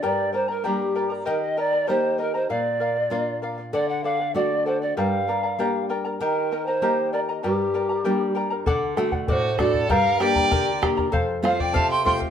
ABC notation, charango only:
X:1
M:2/4
L:1/16
Q:1/4=97
K:Gm
V:1 name="Charango"
[GBdgb]2 [Bdgb] [Bdb] [GBdgb]2 [Bdgb] [Bdb] | [GBegb]2 [Begb] [Beb] [GBegb]2 [Begb] [Beb] | [Bdf]2 [Bdf] [df] [Bdf]2 [Bdf] [df] | [Ad^f]2 [Adf] [df] [Adf]2 [Adf] [df] |
[GBdgb]2 [Bdgb] [Bdb] [GBdgb]2 [Bdgb] [Bdb] | [GBegb]2 [Begb] [Beb] [GBegb]2 [Begb] [Beb] | [GBdgb]2 [Bdgb] [Bdb] [GBdgb]2 [Bdgb] [Bdb] | [Ad^f]2 [Adf] [df] [Adf]2 [Adf] [df] |
[GBdgb]2 [Bdgb] [Bdb] [GBdgb]2 [Bdgb] [Bdb] | [Acf]2 [Acf] [cf] [Acf]2 [Acf] [cf] |]